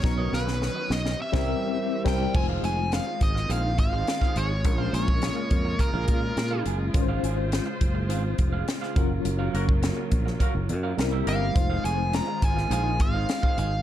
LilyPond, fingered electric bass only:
\new Staff \with { instrumentName = "Fingered electric bass" } { \clef bass \time 4/4 \key f \phrygian \tempo 4 = 104 ces,8 ces,8. r16 ces,8 r16 c,8 r8. c,8 | f,,8 f,,8. r16 aes,,8 bes,,8 aes,,8 r8 aes,,8 | bes,,8 bes,,8. r16 f,8 r16 bes,,16 bes,8 bes,8 ges,,8 | aes,,8 aes,,8. r16 ges,,8 aes,,8 f,,8 r8 ges,,8 |
ges,,8 ges,,8. r16 bes,,8 r16 ges,,16 ges,8 c,8 g,,8 | f,,8 f,,8. r16 aes,,8 bes,,8 aes,,8 r8 aes,,8 | }